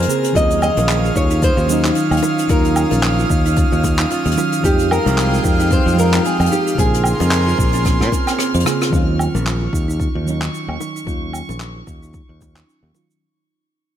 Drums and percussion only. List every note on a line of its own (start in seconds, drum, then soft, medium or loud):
0.02 closed hi-hat medium
0.10 shaker loud
0.24 closed hi-hat medium
0.24 shaker medium
0.35 kick loud
0.35 closed hi-hat medium
0.35 shaker medium
0.50 closed hi-hat soft
0.50 shaker soft
0.62 low woodblock medium
0.62 shaker medium
0.77 closed hi-hat medium
0.77 high bongo soft
0.77 shaker soft
0.89 clap medium
0.89 closed hi-hat medium
0.89 shaker medium
1.05 shaker soft
1.16 kick loud
1.16 shaker medium
1.30 closed hi-hat medium
1.30 shaker soft
1.42 kick loud
1.42 closed hi-hat medium
1.42 shaker medium
1.58 shaker soft
1.69 closed hi-hat soft
1.69 shaker medium
1.85 clap medium
1.85 closed hi-hat medium
1.85 shaker medium
1.95 closed hi-hat medium
1.95 shaker medium
2.11 closed hi-hat medium
2.11 low woodblock medium
2.11 shaker soft
2.17 closed hi-hat medium
2.23 high bongo medium
2.23 shaker medium
2.39 closed hi-hat medium
2.39 shaker medium
2.49 kick loud
2.49 closed hi-hat medium
2.49 shaker medium
2.64 closed hi-hat soft
2.64 shaker soft
2.76 low woodblock medium
2.76 shaker medium
2.91 closed hi-hat medium
2.91 high bongo medium
2.91 shaker soft
3.03 clap medium
3.03 closed hi-hat medium
3.03 shaker medium
3.19 shaker soft
3.30 kick loud
3.30 shaker medium
3.45 closed hi-hat medium
3.45 shaker medium
3.56 kick loud
3.56 closed hi-hat medium
3.56 high bongo soft
3.56 shaker medium
3.73 shaker soft
3.84 kick medium
3.84 closed hi-hat medium
3.84 high bongo medium
3.84 shaker medium
3.98 clap medium
3.98 closed hi-hat medium
3.98 shaker soft
4.10 closed hi-hat medium
4.10 shaker medium
4.25 closed hi-hat soft
4.25 shaker soft
4.31 closed hi-hat medium
4.38 high bongo medium
4.38 shaker medium
4.52 closed hi-hat medium
4.52 shaker medium
4.64 kick loud
4.64 closed hi-hat medium
4.64 shaker medium
4.79 closed hi-hat medium
4.79 shaker soft
4.91 low woodblock medium
4.91 shaker medium
5.06 closed hi-hat medium
5.06 high bongo soft
5.06 shaker medium
5.18 clap medium
5.18 closed hi-hat medium
5.18 shaker medium
5.34 shaker soft
5.44 kick loud
5.44 shaker medium
5.59 closed hi-hat medium
5.59 shaker medium
5.70 kick loud
5.70 closed hi-hat medium
5.70 shaker medium
5.88 shaker soft
5.98 closed hi-hat soft
5.98 shaker medium
6.12 clap medium
6.12 closed hi-hat medium
6.12 shaker medium
6.24 closed hi-hat medium
6.24 shaker medium
6.40 closed hi-hat medium
6.40 low woodblock medium
6.40 shaker soft
6.46 closed hi-hat medium
6.52 high bongo soft
6.52 shaker medium
6.67 closed hi-hat medium
6.67 shaker soft
6.78 kick loud
6.78 closed hi-hat medium
6.78 shaker medium
6.94 closed hi-hat medium
6.94 shaker soft
7.04 low woodblock medium
7.04 shaker medium
7.20 closed hi-hat medium
7.20 high bongo medium
7.20 shaker soft
7.31 clap medium
7.31 closed hi-hat medium
7.31 shaker medium
7.49 shaker soft
7.58 kick loud
7.58 shaker medium
7.73 closed hi-hat medium
7.73 shaker medium
7.85 kick loud
7.85 cross-stick medium
7.85 closed hi-hat medium
7.85 high bongo soft
7.85 shaker medium
8.01 cross-stick medium
8.01 shaker soft
8.12 kick medium
8.12 closed hi-hat soft
8.12 high bongo medium
8.12 shaker medium
8.27 cross-stick medium
8.27 closed hi-hat medium
8.27 low woodblock medium
8.27 shaker medium
8.39 cross-stick medium
8.39 closed hi-hat medium
8.39 shaker medium
8.54 closed hi-hat medium
8.54 shaker soft
8.60 closed hi-hat medium
8.66 cross-stick loud
8.66 high bongo medium
8.66 shaker medium
8.82 cross-stick medium
8.82 closed hi-hat medium
8.82 shaker medium
8.93 kick loud
8.93 shaker soft
9.19 low woodblock medium
9.19 shaker medium
9.35 high bongo soft
9.35 shaker medium
9.47 clap medium
9.47 shaker soft
9.73 kick loud
9.73 shaker medium
9.90 shaker medium
10.00 kick loud
10.00 shaker soft
10.28 shaker medium
10.42 clap medium
10.42 shaker medium
10.54 shaker soft
10.69 low woodblock medium
10.81 high bongo soft
10.81 shaker medium
10.96 shaker medium
11.07 kick loud
11.07 shaker soft
11.33 low woodblock medium
11.33 shaker medium
11.49 high bongo soft
11.49 shaker soft
11.60 clap medium
11.60 shaker soft
11.87 kick loud
11.87 shaker medium
12.03 shaker soft
12.14 kick loud
12.14 high bongo soft
12.14 shaker soft
12.41 kick medium
12.41 high bongo medium
12.41 shaker medium
12.56 clap medium
12.56 shaker medium
12.69 shaker soft
12.95 high bongo soft
12.95 shaker medium
13.11 shaker soft